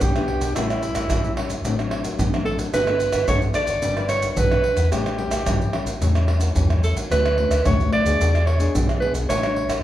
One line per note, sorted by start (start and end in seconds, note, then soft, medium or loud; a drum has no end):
0.00 0.36 B1 medium
0.00 0.53 B2 medium
0.00 0.11 B3 medium
0.00 0.11 D4 medium
0.00 0.11 G4 medium
0.00 0.55 G4 loud
0.00 pandeiro medium
0.00 maracas medium
0.00 surdo loud
0.16 0.52 B3 medium
0.16 0.52 D4 medium
0.16 0.52 G4 medium
0.16 pandeiro soft
0.16 tamborim medium
0.16 maracas soft
0.28 pandeiro medium
0.40 0.53 B1 medium
0.40 pandeiro medium
0.40 maracas medium
0.40 surdo soft
0.55 0.90 A1 medium
0.55 1.08 A2 medium
0.55 1.06 G3 medium
0.55 1.06 C#4 medium
0.55 1.61 E4 medium
0.55 1.06 E4 medium
0.55 pandeiro medium
0.55 tamborim medium
0.55 maracas medium
0.55 surdo medium
0.70 pandeiro soft
0.70 tamborim medium
0.70 maracas soft
0.83 pandeiro medium
0.83 maracas medium
0.83 surdo soft
0.95 1.08 A1 medium
0.95 pandeiro medium
0.95 tamborim medium
0.95 maracas medium
0.95 surdo soft
1.10 1.34 A1 medium
1.10 1.62 E3 medium
1.10 1.33 G3 medium
1.10 1.34 C#4 medium
1.10 1.34 E4 medium
1.10 pandeiro medium
1.10 tamborim medium
1.10 maracas medium
1.10 surdo loud
1.24 pandeiro soft
1.24 maracas soft
1.37 1.55 G3 medium
1.37 1.55 C#4 medium
1.37 1.55 E4 medium
1.37 pandeiro medium
1.37 tamborim medium
1.50 1.62 A1 medium
1.50 pandeiro medium
1.50 maracas medium
1.50 surdo soft
1.65 2.11 A1 medium
1.65 2.17 A2 medium
1.65 1.73 F#3 medium
1.65 1.73 C4 medium
1.65 1.73 D4 medium
1.65 pandeiro medium
1.65 maracas medium
1.65 surdo medium
1.78 2.29 F#3 medium
1.78 2.29 C4 medium
1.78 2.29 D4 medium
1.78 pandeiro soft
1.78 tamborim medium
1.78 maracas soft
1.91 pandeiro medium
1.91 tamborim medium
2.04 pandeiro medium
2.04 maracas medium
2.04 surdo soft
2.18 2.54 A1 medium
2.18 2.71 A2 medium
2.18 pandeiro medium
2.18 maracas medium
2.18 surdo loud
2.33 2.69 F#3 medium
2.33 2.70 C4 medium
2.33 2.70 D4 medium
2.33 pandeiro soft
2.33 tamborim medium
2.33 maracas soft
2.45 2.58 A4 medium
2.45 pandeiro medium
2.59 2.71 A1 medium
2.59 pandeiro medium
2.59 maracas medium
2.59 surdo soft
2.73 3.08 G1 loud
2.73 3.26 G3 medium
2.73 2.82 B3 medium
2.73 2.82 D4 medium
2.73 2.82 A4 medium
2.73 3.25 B4 loud
2.73 pandeiro medium
2.73 tamborim medium
2.73 maracas medium
2.73 surdo medium
2.87 3.25 B3 medium
2.87 3.25 D4 medium
2.87 3.25 A4 medium
2.87 pandeiro soft
2.87 tamborim medium
2.87 maracas soft
3.00 pandeiro medium
3.00 maracas medium
3.00 surdo soft
3.12 3.25 G1 medium
3.12 pandeiro medium
3.12 tamborim medium
3.12 maracas medium
3.12 surdo soft
3.28 3.51 G1 medium
3.28 3.81 D3 medium
3.28 3.45 B3 medium
3.28 3.45 D4 medium
3.28 3.45 A4 medium
3.28 3.41 C#5 loud
3.28 pandeiro medium
3.28 tamborim medium
3.28 maracas medium
3.28 surdo loud
3.42 pandeiro soft
3.42 maracas soft
3.54 3.78 B3 medium
3.54 3.78 D4 medium
3.54 3.79 A4 medium
3.54 4.06 D5 loud
3.54 pandeiro medium
3.54 tamborim medium
3.54 maracas medium
3.67 3.79 G1 medium
3.67 pandeiro medium
3.67 maracas medium
3.67 surdo soft
3.82 4.29 G1 medium
3.82 4.35 G3 medium
3.82 3.93 D4 medium
3.82 3.93 E4 medium
3.82 3.93 B4 medium
3.82 pandeiro medium
3.82 maracas medium
3.82 surdo medium
3.97 4.47 D4 medium
3.97 4.48 E4 medium
3.97 4.47 B4 medium
3.97 pandeiro soft
3.97 tamborim medium
3.97 maracas soft
4.09 4.30 C#5 loud
4.09 pandeiro medium
4.09 tamborim medium
4.09 maracas medium
4.22 pandeiro medium
4.22 maracas medium
4.22 surdo soft
4.30 4.39 C#5 medium
4.36 4.72 B1 medium
4.36 4.89 G3 medium
4.36 4.91 B4 loud
4.36 pandeiro medium
4.36 maracas medium
4.36 surdo loud
4.51 4.88 D4 medium
4.51 4.88 E4 medium
4.51 4.88 B4 medium
4.51 pandeiro soft
4.51 tamborim medium
4.51 maracas soft
4.64 pandeiro medium
4.76 4.89 E2 medium
4.76 pandeiro medium
4.76 maracas medium
4.76 surdo soft
4.91 5.27 A1 loud
4.91 5.44 A2 medium
4.91 5.08 G3 medium
4.91 5.08 C#4 medium
4.91 5.08 E4 medium
4.91 5.97 G4 medium
4.91 pandeiro medium
4.91 tamborim medium
4.91 maracas medium
4.91 surdo medium
5.06 pandeiro soft
5.06 tamborim medium
5.06 maracas soft
5.18 5.35 G3 medium
5.18 5.35 C#4 medium
5.18 5.35 E4 medium
5.18 pandeiro medium
5.31 5.43 A1 medium
5.31 pandeiro medium
5.31 tamborim medium
5.31 maracas medium
5.31 surdo soft
5.45 5.70 A1 medium
5.45 5.98 E3 medium
5.45 5.69 G3 medium
5.45 5.69 C#4 medium
5.45 5.70 E4 medium
5.45 pandeiro medium
5.45 tamborim medium
5.45 maracas medium
5.45 surdo loud
5.61 pandeiro soft
5.61 maracas soft
5.72 5.89 G3 medium
5.72 5.89 C#4 medium
5.72 5.90 E4 medium
5.72 pandeiro medium
5.72 tamborim medium
5.85 5.98 A1 medium
5.85 pandeiro medium
5.85 maracas medium
5.85 surdo soft
6.00 6.47 E2 medium
6.00 6.53 A2 medium
6.00 6.10 G3 medium
6.00 6.11 C#4 medium
6.00 6.11 E4 medium
6.00 pandeiro medium
6.00 maracas medium
6.00 surdo medium
6.15 6.52 G3 medium
6.15 6.52 C#4 medium
6.15 6.52 E4 medium
6.15 pandeiro soft
6.15 tamborim medium
6.15 maracas soft
6.28 pandeiro medium
6.28 tamborim medium
6.41 pandeiro medium
6.41 maracas medium
6.41 surdo soft
6.55 6.90 E2 medium
6.55 7.07 E3 medium
6.55 6.64 G3 medium
6.55 6.64 C#4 medium
6.55 6.64 E4 medium
6.55 pandeiro medium
6.55 maracas medium
6.55 surdo loud
6.69 7.06 G3 medium
6.69 7.06 C#4 medium
6.69 7.06 E4 medium
6.69 pandeiro soft
6.69 tamborim medium
6.69 maracas soft
6.84 6.96 A4 medium
6.84 pandeiro medium
6.84 maracas medium
6.94 7.07 A1 medium
6.94 pandeiro medium
6.94 maracas medium
6.94 surdo soft
7.10 7.45 D2 medium
7.10 7.62 D3 medium
7.10 7.33 A3 medium
7.10 7.34 C#4 medium
7.10 7.34 F#4 medium
7.10 7.62 B4 medium
7.10 pandeiro medium
7.10 tamborim medium
7.10 maracas medium
7.10 surdo medium
7.26 pandeiro soft
7.26 tamborim medium
7.26 maracas soft
7.37 7.54 A3 medium
7.37 7.54 C#4 medium
7.37 7.54 F#4 medium
7.37 pandeiro medium
7.49 7.62 D2 medium
7.49 pandeiro medium
7.49 tamborim medium
7.49 maracas medium
7.49 surdo soft
7.65 7.88 D2 medium
7.65 8.17 A2 medium
7.65 7.91 A3 medium
7.65 7.91 C#4 medium
7.65 7.91 F#4 medium
7.65 7.91 C#5 loud
7.65 pandeiro medium
7.65 tamborim medium
7.65 maracas medium
7.65 surdo loud
7.80 pandeiro soft
7.80 maracas soft
7.93 8.48 D5 loud
7.93 pandeiro medium
7.93 tamborim medium
8.05 8.17 D2 medium
8.05 8.56 B3 medium
8.05 8.56 D4 medium
8.05 8.57 G#4 medium
8.05 pandeiro medium
8.05 maracas medium
8.05 surdo soft
8.19 8.66 E2 medium
8.19 8.72 E3 medium
8.19 pandeiro medium
8.19 maracas medium
8.19 surdo medium
8.35 pandeiro soft
8.35 tamborim medium
8.35 maracas soft
8.47 8.74 C#5 medium
8.47 pandeiro medium
8.47 tamborim medium
8.60 8.97 B3 medium
8.60 8.97 D4 medium
8.60 8.97 G#4 medium
8.60 pandeiro medium
8.60 maracas medium
8.60 surdo soft
8.75 9.09 B1 medium
8.75 9.27 B2 medium
8.75 pandeiro medium
8.75 maracas medium
8.75 surdo loud
8.89 pandeiro soft
8.89 tamborim medium
8.89 maracas soft
9.00 9.27 B3 medium
9.00 9.27 D4 medium
9.00 9.27 G#4 medium
9.00 9.13 B4 medium
9.00 pandeiro medium
9.13 9.26 B1 medium
9.13 pandeiro medium
9.13 maracas medium
9.13 surdo soft
9.28 9.64 A1 loud
9.28 9.81 A2 medium
9.28 9.38 G3 medium
9.28 9.38 D4 medium
9.28 9.38 E4 medium
9.28 9.80 C#5 loud
9.28 pandeiro medium
9.28 tamborim medium
9.28 maracas medium
9.28 surdo medium
9.43 9.80 G3 medium
9.43 9.80 D4 medium
9.43 9.80 E4 medium
9.43 pandeiro soft
9.43 tamborim medium
9.43 maracas soft
9.56 pandeiro medium
9.68 9.81 A1 medium
9.68 pandeiro medium
9.68 tamborim medium
9.68 maracas medium
9.68 surdo soft